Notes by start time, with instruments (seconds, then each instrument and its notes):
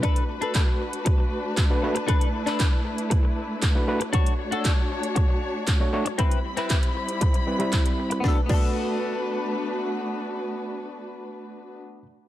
Already playing: string section B4
0.03 string section A3 D4 F#4, clean electric guitar D4 A4 B4, kick, closed hi-hat
0.16 closed hi-hat
0.41 clean electric guitar D4 A4 B4, closed hi-hat
0.55 kick, clap, closed hi-hat
0.80 muted clean electric guitar stroke
0.93 closed hi-hat
1.05 muted clean electric guitar stroke, kick, closed hi-hat
1.18 muted clean electric guitar stroke
1.57 kick, clap, closed hi-hat
1.70 reed electric piano A3 D4 F#4 B4
1.82 reed electric piano A3 D4 F#4 B4, muted clean electric guitar stroke
1.95 muted clean electric guitar stroke, closed hi-hat
2.08 clean electric guitar D4 A4 B4, string section E4, kick, closed hi-hat
2.21 closed hi-hat
2.46 clean electric guitar D4 A4 B4, clap, closed hi-hat
2.60 kick, clap, closed hi-hat
2.85 muted clean electric guitar stroke
2.98 closed hi-hat
3.10 muted clean electric guitar stroke, kick, closed hi-hat
3.23 muted clean electric guitar stroke
3.62 kick, clap, closed hi-hat
3.75 reed electric piano A3 D4 F#4 B4
3.87 reed electric piano A3 D4 F#4 B4, muted clean electric guitar stroke
4.00 muted clean electric guitar stroke, closed hi-hat
4.13 clean electric guitar D4 F#4 C#5, string section D4 F#4 C#5, kick, closed hi-hat
4.26 closed hi-hat
4.51 clean electric guitar D4 F#4 A4, closed hi-hat
4.65 kick, clap, closed hi-hat
4.90 muted clean electric guitar stroke
5.03 closed hi-hat
5.15 muted clean electric guitar stroke, kick, closed hi-hat
5.28 muted clean electric guitar stroke
5.67 kick, clap, closed hi-hat
5.80 reed electric piano A3 D4 F#4 C#5
5.93 reed electric piano A3 D4 F#4 C#5, muted clean electric guitar stroke
6.05 muted clean electric guitar stroke, closed hi-hat
6.18 string section G3 C4 E4 B5, clean electric guitar C4 E4 B4, kick, closed hi-hat
6.31 closed hi-hat
6.57 clean electric guitar C4 E4 B4, clap, closed hi-hat
6.70 kick, clap, closed hi-hat
6.83 closed hi-hat
6.95 muted clean electric guitar stroke
7.09 closed hi-hat
7.21 muted clean electric guitar stroke, kick, closed hi-hat
7.34 muted clean electric guitar stroke, closed hi-hat
7.47 reed electric piano G3 C4 E4 B4
7.59 reed electric piano G3 C4 E4 B5, closed hi-hat
7.73 kick, clap, closed hi-hat
7.86 closed hi-hat
7.98 muted clean electric guitar stroke
8.10 muted clean electric guitar stroke, closed hi-hat
8.20 reed electric piano A3 D4, string section A3 D4 F#4 B4, clean electric guitar B3 D4, kick, snare
8.25 reed electric piano F#4 B4, clean electric guitar A4
8.46 reed electric piano A3 D4, clean electric guitar B3 D4, kick, crash
8.50 reed electric piano F#4 B4, clean electric guitar A4